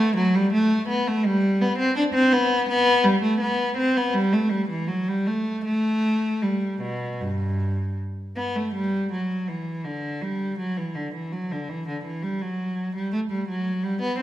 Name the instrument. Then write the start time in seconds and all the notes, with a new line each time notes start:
cello
Already playing: A3
0.16 F#3
0.35 G3
0.53 A3
0.88 B3
1.08 A3
1.25 G3
1.61 B3
1.78 C4
1.96 D4
2.14 C4
2.32 B3
2.69 B3
3.04 G3
3.22 A3
3.40 B3
3.77 C4
3.96 B3
4.13 G3
4.32 A3
4.49 G3
4.69 E3
4.87 F#3
5.08 G3
5.27 A3
5.64 A3
6.42 G3
6.81 B2
7.20 G2
8.36 B3
8.55 A3
8.74 G3
9.12 F#3
9.48 E3
9.84 D3
10.22 G3
10.59 F#3
10.77 E3
10.95 D3
11.14 E3
11.32 F#3
11.51 D3
11.69 E3
11.88 D3
12.04 E3
12.22 G3
12.41 F#3
12.95 G3
13.12 A3
13.31 G3
13.48 F#3
13.83 G3
14.01 B3
14.19 C4